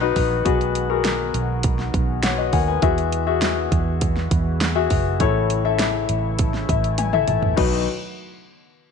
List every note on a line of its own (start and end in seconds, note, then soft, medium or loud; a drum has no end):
0.00 0.12 B1 medium
0.00 0.45 B2 medium
0.00 2.79 D#3 medium
0.00 0.44 F#3 medium
0.00 5.17 B3 medium
0.00 0.48 D#4 medium
0.00 0.45 F#4 medium
0.00 5.17 F#4 medium
0.00 0.45 B4 medium
0.00 0.47 C#5 medium
0.16 0.44 A#1 medium
0.16 kick medium
0.16 open hi-hat medium
0.45 1.31 B1 medium
0.45 1.30 B2 medium
0.45 5.17 G#3 medium
0.45 0.85 F#4 medium
0.45 0.86 G#4 medium
0.45 0.86 B4 medium
0.45 kick medium
0.45 closed hi-hat medium
0.61 closed hi-hat soft
0.75 closed hi-hat medium
0.90 1.97 F#4 medium
0.90 1.97 G#4 medium
0.90 1.97 A#4 medium
1.05 snare medium
1.05 closed hi-hat medium
1.34 1.90 B1 medium
1.34 closed hi-hat medium
1.63 kick loud
1.63 closed hi-hat medium
1.79 snare soft
1.94 2.49 B1 medium
1.94 kick medium
1.94 closed hi-hat medium
2.23 2.37 C#5 medium
2.23 2.51 F#5 medium
2.23 snare loud
2.23 closed hi-hat medium
2.38 2.53 F#4 medium
2.38 2.52 D#5 medium
2.53 2.81 D#2 medium
2.53 2.68 A#4 medium
2.53 2.67 F#5 medium
2.53 2.66 G#5 medium
2.53 kick medium
2.53 open hi-hat medium
2.68 2.96 B4 medium
2.68 2.96 G#5 medium
2.82 3.68 E2 medium
2.82 7.54 E3 medium
2.82 3.68 E3 medium
2.82 3.23 F#4 medium
2.82 3.23 G#4 medium
2.82 3.23 E5 medium
2.82 kick loud
2.82 closed hi-hat medium
2.98 closed hi-hat soft
3.12 closed hi-hat medium
3.27 4.35 F#4 medium
3.27 4.35 G#4 medium
3.27 4.35 E5 medium
3.42 snare loud
3.42 closed hi-hat medium
3.72 4.27 E2 medium
3.72 kick medium
3.72 closed hi-hat medium
4.01 kick medium
4.01 closed hi-hat loud
4.16 snare soft
4.31 4.87 E2 medium
4.31 kick medium
4.31 closed hi-hat medium
4.61 snare loud
4.61 closed hi-hat medium
4.75 5.16 F#4 medium
4.75 5.16 G#4 medium
4.75 5.16 E5 medium
4.90 5.18 F#1 medium
4.90 kick medium
4.90 open hi-hat medium
5.19 6.05 A1 loud
5.19 6.05 A2 medium
5.19 7.55 C#3 medium
5.19 7.55 A3 medium
5.19 7.55 E4 medium
5.19 5.61 E4 medium
5.19 5.61 A4 medium
5.19 5.61 C#5 loud
5.19 kick loud
5.19 closed hi-hat medium
5.50 closed hi-hat medium
5.65 6.72 E4 medium
5.65 6.72 A4 medium
5.65 6.68 E5 medium
5.79 snare loud
5.79 closed hi-hat medium
6.09 6.65 A1 medium
6.09 closed hi-hat medium
6.39 kick loud
6.39 closed hi-hat loud
6.54 snare soft
6.69 7.24 A1 medium
6.69 6.97 E5 medium
6.69 kick medium
6.69 closed hi-hat medium
6.84 closed hi-hat medium
6.98 7.26 G#5 medium
6.98 closed hi-hat medium
6.98 high tom medium
7.13 7.54 E4 medium
7.13 7.54 A4 medium
7.13 7.54 E5 medium
7.13 mid tom medium
7.28 7.56 A1 medium
7.28 7.55 A5 medium
7.28 closed hi-hat medium
7.28 mid tom medium
7.43 floor tom medium
7.57 7.85 B1 medium
7.57 7.85 D#3 medium
7.57 7.85 F#3 medium
7.57 7.85 B3 medium
7.57 7.85 D#4 medium
7.57 7.85 F#4 medium
7.57 7.85 B4 medium
7.57 kick loud
7.57 crash medium